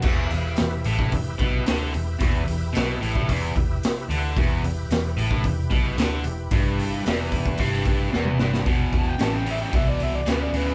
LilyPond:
<<
  \new Staff \with { instrumentName = "Harmonica" } { \time 4/4 \key e \minor \tempo 4 = 112 r1 | r1 | r1 | r1 |
r8 a''16 g''16 a''16 g''16 e''16 g''16 e''16 d''16 e''16 d''16 b'16 d''16 b'8 | }
  \new Staff \with { instrumentName = "Tonewheel organ" } { \time 4/4 \key e \minor <e' g' b' e''>1~ | <e' g' b' e''>1 | <e' g' b'>1~ | <e' g' b'>1 |
r1 | }
  \new Staff \with { instrumentName = "Distorted electric guitar" } { \clef bass \time 4/4 \key e \minor e,8 e,8 e,8 a,8 e,8 b,8 d8 e,8 | e,8 e,8 b,8 a,8 e,8 e,8 r8 d8 | e,8 e,8 e,8 a,8 e,8 b,8 d8 e,8 | g,4 e,4 g,4 e,8 g,8 |
<e, b,>4 <e, cis>8 <e, cis>8 <e, b,>4 <e, cis>8 <e, cis>8 | }
  \new Staff \with { instrumentName = "Fingered electric bass" } { \clef bass \time 4/4 \key e \minor e,,8 e,,8 e,,8 a,,8 e,,8 b,,8 d,8 e,,8 | e,,8 e,,8 b,,8 a,,8 e,,8 e,,8 r8 d,8 | e,,8 e,,8 e,,8 a,,8 e,,8 b,,8 d,8 e,,8 | g,,4 e,,4 g,,4 e,,8 g,,8 |
e,,8 e,,8 a,,4 c,8 c,8 d,8 d,8 | }
  \new DrumStaff \with { instrumentName = "Drums" } \drummode { \time 4/4 <cymc bd>8 hho8 <hho sn>8 hho16 bd16 <hho bd>8 <hho bd>8 <hho sn>8 hho8 | <hho bd>8 hho8 <hho sn>8 hho16 bd16 <hho bd>8 <hho bd>8 <hho sn>8 hho8 | <hho bd>8 hho8 <hho sn>8 hho16 bd16 <hho bd>8 <hho bd>8 <hho sn>8 hho8 | <hho bd>8 hho8 <hho sn>8 <hho bd>16 bd16 <hho bd>8 <hho bd>8 sn16 toml16 sn16 sn16 |
<hho bd>8 <hho bd>8 <hho sn>8 hho8 <hho bd>8 hho8 <hho sn>8 hho8 | }
>>